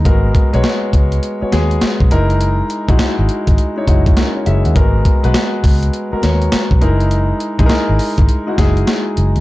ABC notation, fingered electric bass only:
X:1
M:4/4
L:1/16
Q:"Swing 16ths" 1/4=102
K:F#mix
V:1 name="Fingered electric bass" clef=bass
G,,,2 z B,,, z2 C,,2 z2 D,,2 z B,,, F,,,2- | F,,,2 z A,,, z G,,, z G,,, z2 F,,,2 z2 F,,, D,, | G,,,2 z B,,, z2 C,,2 z2 D,,2 z B,,, F,,,2- | F,,,2 z A,,, z G,,, z G,,, z2 F,,,2 z2 F,,, D,, |]